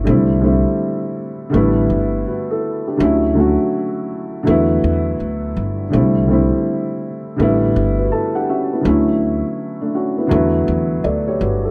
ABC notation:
X:1
M:4/4
L:1/16
Q:"Swing 16ths" 1/4=82
K:D
V:1 name="Upright piano"
z12 [FB] [EA]2 [DG]- | [DG] z12 z3 | z8 z3 [FB] [EAa] [DGf] [CFe] [B,E]- | [B,E] z4 [A,D] [CF] [B,E]2 z3 [Ad] [Gc] [FB] [EA] |]
V:2 name="Upright piano"
[D,G,A,=CE]2 [D,G,A,CE]6 [D,G,A,B,E]8 | [D,F,A,CE]2 [D,F,A,CF]6 [D,F,A,B,E]8 | [D,G,A,=CE]2 [D,G,A,CE]6 [D,G,A,B,E]8 | [D,F,A,CE]2 z6 [D,F,A,B,E]8 |]
V:3 name="Upright bass" clef=bass
=C,,3 z4 z A,,,2 G,,,2 z4 | D,,3 z4 z E,,2 E,,2 D,,2 G,,,2 | =C,,3 z4 z A,,,2 G,,,2 z4 | D,,3 z4 z E,,2 E,,2 D,,2 G,,,2 |]